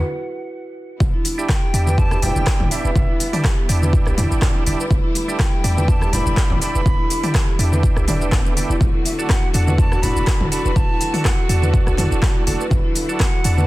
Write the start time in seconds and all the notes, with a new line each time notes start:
Already playing: F#5
1.00 E1 D3 G3 B3 E4, kick, muted conga, high conga, low conga, shaker
1.14 E4
1.25 E4, open hi-hat, muted conga, shaker
1.38 D4 E4 G4, shaker
1.49 G5, kick, cross-stick, clap, muted conga, high conga, shaker
1.63 G4
1.74 E2 D4 E4 G4, open hi-hat, muted conga, shaker
1.87 B4, high conga, shaker
1.98 A5, kick, shaker
2.11 G4, cross-stick, muted conga, shaker
2.22 E1 D4 E4 G4 G5, open hi-hat, low conga, shaker
2.35 E1, muted conga, high conga, shaker
2.47 kick, cross-stick, clap, shaker
2.60 G1 E4, mid tom, muted conga, low conga
2.71 D4 E4 G4 E5, open hi-hat, shaker
2.84 E1 B4, shaker
2.95 E1, kick, muted conga, high conga, low conga, shaker
3.09 E4
3.20 E4, open hi-hat, muted conga, shaker
3.33 D4 E4 G4, open hi-hat, mid tom, shaker
3.44 kick, cross-stick, clap, muted conga, high conga, shaker
3.58 G4
3.69 E2 D4 E4 G4, open hi-hat, muted conga, shaker
3.82 B4, high conga, shaker
3.93 kick, shaker
4.06 B1 G4, cross-stick, muted conga, shaker
4.18 E2 D4 E4 G4, open hi-hat, mid tom, high conga, low conga, shaker
4.31 G1, muted conga, shaker
4.42 kick, cross-stick, clap, low conga, shaker
4.55 E4, muted conga
4.67 E1 D4 E4 G4, open hi-hat, high conga, shaker
4.79 B4, shaker
4.90 E1 A3, kick, muted conga, high conga, low conga, shaker
5.04 E4
5.15 E4, open hi-hat, muted conga, shaker
5.28 D4 E4 G4, shaker
5.39 G5, kick, cross-stick, clap, muted conga, high conga, shaker
5.53 G4
5.64 E2 D4 E4 G4, open hi-hat, muted conga, shaker
5.77 B4, high conga, shaker
5.88 A5, kick, shaker
6.01 G4, cross-stick, muted conga, shaker
6.13 E1 D4 E4 G4 B5, open hi-hat, low conga, shaker
6.26 E1, muted conga, high conga, shaker
6.37 kick, cross-stick, clap, shaker
6.50 G1 E4, mid tom, muted conga, low conga
6.62 D4 E4 G4 B5, open hi-hat, shaker
6.75 E1 B4, shaker
6.86 E1, kick, muted conga, high conga, low conga, shaker
6.99 E4
7.10 E4, open hi-hat, muted conga, shaker
7.23 D4 E4 G4, open hi-hat, mid tom, shaker
7.35 kick, cross-stick, clap, muted conga, high conga, shaker
7.48 G4
7.59 E2 D4 E4 G4, open hi-hat, muted conga, shaker
7.72 B4, high conga, shaker
7.83 kick, shaker
7.96 B1 G4, cross-stick, muted conga, shaker
8.07 E1 D4 E4 G4 D5, open hi-hat, mid tom, high conga, low conga, shaker
8.21 B4, muted conga, shaker
8.32 B3, kick, cross-stick, clap, low conga, shaker
8.45 B4, muted conga, shaker
8.56 D4 E4 G4, open hi-hat, high conga, shaker
8.70 E1 E4, shaker
8.81 E1 F#3 F#4, kick, muted conga, high conga, low conga, shaker
8.94 E4
9.05 E4 E5, open hi-hat, muted conga, shaker
9.19 D4 F#4 A4, shaker
9.29 F#5, kick, cross-stick, clap, muted conga, high conga, shaker
9.43 F#4
9.54 E2 D4 F#4 A4 F#5, open hi-hat, muted conga, shaker
9.67 B4, high conga, shaker
9.78 A5, kick, shaker
9.92 F#4, cross-stick, muted conga, shaker
10.02 E1 D4 E4 F#4 A4 B5, open hi-hat, low conga, shaker
10.16 E1, muted conga, high conga, shaker
10.27 kick, cross-stick, clap, shaker
10.40 E1 E4, mid tom, muted conga, low conga
10.52 D4 F#4 A4 B5, open hi-hat, shaker
10.65 E1 B4, shaker
10.76 E1 A5, kick, muted conga, high conga, low conga, shaker
10.89 E4
11.01 E4, open hi-hat, muted conga, shaker
11.14 D4 F#4 A4, open hi-hat, mid tom, shaker
11.25 F#5, kick, cross-stick, clap, muted conga, high conga, shaker
11.38 F#4
11.49 E2 D4 F#4 A4, open hi-hat, muted conga, shaker
11.62 B4, high conga, shaker
11.74 kick, shaker
11.87 B1 F#4, cross-stick, muted conga, shaker
11.97 E2 D4 E4 F#4 A4, open hi-hat, mid tom, high conga, low conga, shaker
12.11 E1, muted conga, shaker
12.22 F#4, kick, cross-stick, clap, low conga, shaker
12.36 E4, muted conga
12.47 E1 D4 F#4 A4, open hi-hat, high conga, shaker
12.60 B4, shaker
12.70 E1 E4, kick, muted conga, high conga, low conga, shaker
12.85 E4
12.95 E4, open hi-hat, muted conga, shaker
13.09 D4 F#4 A4, shaker
13.20 F#5, kick, cross-stick, clap, muted conga, high conga, shaker
13.33 F#4
13.44 E2 D4 F#4 A4, open hi-hat, muted conga, shaker
13.58 B4, high conga, shaker